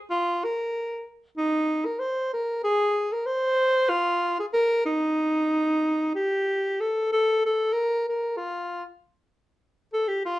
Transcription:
0.11 F4
0.44 A#4
1.37 D#4
1.85 A#4
1.99 C5
2.34 A#4
2.64 G#4
3.12 A#4
3.26 C5
3.89 F4
4.40 G#4
4.53 A#4
4.86 D#4
6.15 G4
6.80 A4
7.12 A4
7.46 A4
7.73 A#4
8.09 A#4
8.37 F4
9.93 A4
10.08 G4
10.25 F4

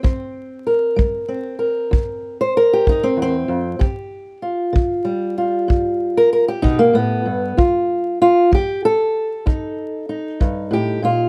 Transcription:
Already playing: G4
0.03 E2 C4, kick
0.67 A#4
0.96 G3, kick
1.28 C4
1.59 A#4
1.91 E2, kick
2.41 C5
2.57 A#4
2.73 G4
2.87 D#4, kick
3.03 C4
3.17 E2
3.22 C4
3.48 F2
3.79 G2 G4, kick
4.42 F4
4.73 D3, kick
5.05 G3
5.38 F4
5.68 G2, kick
6.17 A#4
6.33 A#4
6.48 G4
6.62 B2 D#4, kick
6.79 A#3
6.93 A2 B3
7.25 G2
7.57 F2 F4, kick
8.22 F4
8.51 F3 G4, kick
8.85 A4
9.46 F2 D#4, kick
10.09 D#4
10.40 G2, kick
10.71 A2 G4
11.02 A#2 F4

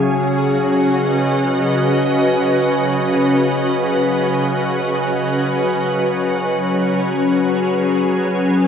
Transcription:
Already playing: C#3 F#3 C#4 G#4 G#5
0.08 F#4
0.66 D#5
0.83 B4
5.95 F#3
6.56 C#4
7.18 G#4
8.35 A4

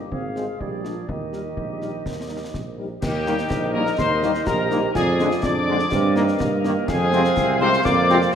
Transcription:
0.12 G#1 C4 G#4 F5, concert bass drum
0.35 G#3 C4 F4 C5, snare
0.59 A#1 G3 G#4 D5, concert bass drum
0.84 F3 G#3 D4 F4 A#4, snare
1.08 D#2 D#3 G4 D#5, concert bass drum
1.33 G3 D#4 G4 A#4, snare
1.56 A#1, concert bass drum
1.81 G3 D#4 G4 A#4, snare
2.05 D#2, concert bass drum, snare
2.29 G3 D#4 G4 A#4
2.53 A#1, concert bass drum, snare
2.78 G3 D#4 G4 A#4
3.01 D#2 D#4 G4 A#4 D#5 G5, concert bass drum, snare, crash
3.25 D#3 G3 A#3 D#4, snare
3.38 snare
3.50 A#1, concert bass drum, snare
3.73 D#3 G3 A#3 D#4 A#4 A#5
3.87 snare
3.98 D#2 C5 C6, concert bass drum, snare
4.22 D#3 G3 A#3 D#4, snare
4.35 snare
4.46 A#1 G4 A#4 A#5, concert bass drum, snare
4.71 D#3 G3 A#3 D#4, snare
4.94 F2 F4 G#4 D5 G#5, concert bass drum, snare, crash
5.19 D3 F3 G#3 D4, snare
5.31 snare
5.42 F2 D4 D5 D6, concert bass drum, snare
5.68 D3 F3 G#3 D4
5.79 snare
5.92 G2 C4 A#4 D#5, concert bass drum, snare
6.16 D#3 A#3 D#4, snare
6.28 snare
6.40 G2 A#3, concert bass drum, snare
6.64 D#3 A#3 D#4, snare
6.88 F2 C4 G#4 C5 F5 G#5, concert bass drum, snare, crash
7.12 C3 G#3 C4 F4, snare
7.24 snare
7.36 C2, concert bass drum, snare
7.60 C3 G#3 C4 F4 C5 C6
7.73 snare
7.84 F2 A#3 D5 D6, concert bass drum, snare
8.10 C3 G#3 C4 F4, snare
8.22 snare

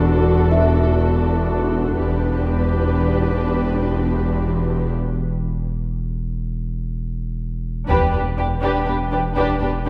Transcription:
Already playing: E1 E2 D4 F#4 A4 F#5
0.51 E4 E5
1.99 E1 E2 D4 G4 B4
7.88 E1 E2 D4 G4 B4, taiko
8.13 E2 D4 G4 B4
8.38 E2 D4 G4 B4
8.62 E2 D4 G4 B4
8.86 E2 D4 G4 B4 G5
9.12 E2 D4 G4 B4
9.36 E2 D4 G4 B4, taiko
9.61 E2 D4 G4 B4
9.85 E2 D4 G4

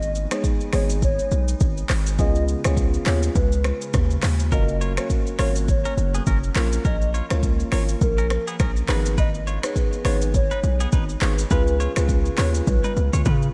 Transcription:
Already playing: G#1 G#3 B3 D#4 D#5
0.02 shaker
0.15 shaker
0.31 G#3 B3 D#4 G#4 C#5, finger snap, cross-stick, shaker
0.44 kick, shaker
0.61 shaker
0.73 G#1 G#3 B3 D#4 G#4 C#5, finger snap, cross-stick, open hi-hat, shaker
0.90 shaker
1.02 C#5, kick, shaker
1.19 shaker
1.31 B1, shaker
1.48 shaker
1.60 G#1, kick, shaker
1.77 shaker
1.89 G#1, finger snap, cross-stick, clap, open hi-hat, shaker
2.06 shaker
2.19 C#2 C#3 G#3 B3 C#4 F4 G#4 D#5, kick, shaker
2.35 shaker
2.48 shaker
2.64 C#2 B3 C#4 F4 G#4 C#5, finger snap, cross-stick, shaker
2.77 kick, shaker
2.94 shaker
3.06 D#2 B3 C#4 F4 G#4 C#5, finger snap, cross-stick, clap, open hi-hat, shaker
3.23 shaker
3.35 C#2 B4, kick, shaker
3.52 shaker
3.64 finger snap, cross-stick, shaker
3.82 shaker
3.94 D#2, finger snap, kick, cross-stick, shaker
4.10 shaker
4.22 D#2, finger snap, cross-stick, clap, open hi-hat, shaker
4.40 shaker
4.52 F#1 F#3 A#3 C#4 F#4 A#4 D#5, kick, shaker
4.68 shaker
4.81 F4 C#5, shaker
4.97 A#3 C#4 F#4 A#4 C#5, finger snap, cross-stick, shaker
5.10 kick, shaker
5.27 shaker
5.39 G#1 A#3 C#4 F4 F#4 A#4 C#5, finger snap, cross-stick, open hi-hat, shaker
5.56 shaker
5.68 C#5, kick, shaker
5.85 C#4 A#4, shaker
5.97 F#1, shaker
6.15 B3 G#4, shaker
6.27 F#1 C#4 A#4, kick, shaker
6.44 shaker
6.55 A#1 F3 A#3 C#4 F4 A#4 C#5, finger snap, cross-stick, clap, open hi-hat, shaker
6.73 shaker
6.85 A#1 C#4 A#4 D#5, kick, shaker
7.01 shaker
7.14 F4 C#5, shaker
7.30 C#2 A#3 C#4 F4 A#4 C#5, finger snap, cross-stick, shaker
7.43 kick, shaker
7.60 shaker
7.72 G#1 A#3 C#4 F4 A#4 C#5, finger snap, cross-stick, open hi-hat, shaker
7.89 shaker
8.01 A#1 A#4, kick, shaker
8.18 C#4 A#4, shaker
8.30 finger snap, cross-stick, shaker
8.47 B3 G#4, shaker
8.60 A#1 C#4 A#4, finger snap, kick, cross-stick, shaker
8.76 shaker
8.88 G#1 G#3 B3 D#4 G#4 B4, finger snap, cross-stick, clap, open hi-hat, shaker
9.06 shaker
9.18 D#4 B4 D#5, kick, shaker
9.34 shaker
9.47 F4 C#5, shaker
9.63 B3 D#4 G#4 B4 C#5, finger snap, cross-stick, shaker
9.76 kick, shaker
9.93 shaker
10.05 G#1 B3 D#4 F4 G#4 B4 C#5, finger snap, cross-stick, open hi-hat, shaker
10.22 shaker
10.34 C#5, kick, shaker
10.51 D#4 B4, shaker
10.63 B1, shaker
10.80 B3 G#4, shaker
10.92 G#1 D#4 B4, kick, shaker
11.09 shaker
11.21 G#1 B3 D#4 F4 G#4 B4 C#5, finger snap, cross-stick, clap, open hi-hat, shaker
11.38 shaker
11.51 C#2 C#3 C#4 F4 G#4 B4, kick, shaker
11.67 shaker
11.80 F4 C#5, shaker
11.96 C#2 C#4 F4 G#4 B4, finger snap, cross-stick, shaker
12.09 kick, shaker
12.26 shaker
12.38 D#2 C#4 F4 G#4 B4 C#5, finger snap, cross-stick, clap, open hi-hat, shaker
12.55 shaker
12.67 B1 B4, kick, high tom, shaker
12.84 D#4 B4, high tom, shaker
12.97 C#2, shaker
13.13 C#2 F4 C#5, mid tom, shaker
13.25 C#3 F4 B4, kick, mid tom, shaker
13.42 shaker

